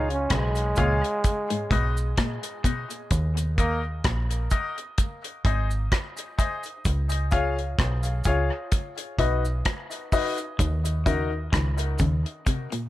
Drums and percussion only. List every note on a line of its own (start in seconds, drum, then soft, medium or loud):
0.10 closed hi-hat soft
0.30 kick loud
0.30 cross-stick loud
0.30 closed hi-hat loud
0.55 closed hi-hat soft
0.55 cabasa soft
0.76 kick medium
0.76 closed hi-hat medium
0.76 cabasa medium
1.04 closed hi-hat soft
1.24 kick loud
1.24 closed hi-hat medium
1.24 cabasa medium
1.50 closed hi-hat medium
1.71 kick loud
1.71 closed hi-hat medium
1.97 cabasa medium
2.17 kick loud
2.17 cross-stick loud
2.17 closed hi-hat loud
2.43 closed hi-hat medium
2.43 cabasa soft
2.64 kick medium
2.64 closed hi-hat medium
2.64 cabasa medium
2.90 closed hi-hat soft
2.90 cabasa medium
3.11 kick medium
3.11 closed hi-hat medium
3.11 cabasa medium
3.37 closed hi-hat medium
3.37 cabasa medium
3.58 kick medium
3.58 closed hi-hat medium
3.58 cabasa medium
4.04 kick loud
4.04 cross-stick loud
4.04 closed hi-hat medium
4.31 closed hi-hat soft
4.31 cabasa medium
4.50 kick medium
4.50 closed hi-hat medium
4.50 cabasa medium
4.78 closed hi-hat soft
4.98 kick medium
4.98 closed hi-hat medium
4.98 cabasa medium
5.24 closed hi-hat medium
5.45 kick loud
5.45 closed hi-hat medium
5.71 cabasa medium
5.92 kick loud
5.92 cross-stick loud
5.92 closed hi-hat medium
6.17 closed hi-hat medium
6.17 cabasa soft
6.39 kick medium
6.39 closed hi-hat medium
6.39 cabasa medium
6.63 closed hi-hat soft
6.63 cabasa soft
6.85 kick medium
6.85 closed hi-hat medium
6.85 cabasa medium
7.10 closed hi-hat medium
7.10 cabasa medium
7.31 kick medium
7.31 closed hi-hat medium
7.31 cabasa medium
7.59 closed hi-hat soft
7.79 kick loud
7.79 cross-stick loud
7.79 closed hi-hat medium
8.03 closed hi-hat soft
8.03 cabasa medium
8.24 kick medium
8.24 closed hi-hat medium
8.24 cabasa medium
8.72 kick loud
8.72 closed hi-hat medium
8.72 cabasa medium
8.98 closed hi-hat medium
9.19 kick medium
9.19 closed hi-hat medium
9.45 cabasa medium
9.65 kick medium
9.65 cross-stick loud
9.65 closed hi-hat medium
9.91 closed hi-hat medium
9.91 cabasa soft
10.12 kick medium
10.12 open hi-hat medium
10.12 cabasa medium
10.38 closed hi-hat soft
10.38 cabasa medium
10.59 kick loud
10.59 closed hi-hat medium
10.59 cabasa medium
10.85 closed hi-hat medium
10.85 cabasa medium
11.06 kick medium
11.06 closed hi-hat medium
11.06 cabasa medium
11.53 kick loud
11.53 cross-stick loud
11.53 closed hi-hat medium
11.78 closed hi-hat soft
11.78 cabasa medium
11.98 kick medium
11.98 closed hi-hat medium
11.98 cabasa medium
12.26 closed hi-hat soft
12.46 kick loud
12.46 closed hi-hat medium
12.46 cabasa medium
12.72 closed hi-hat medium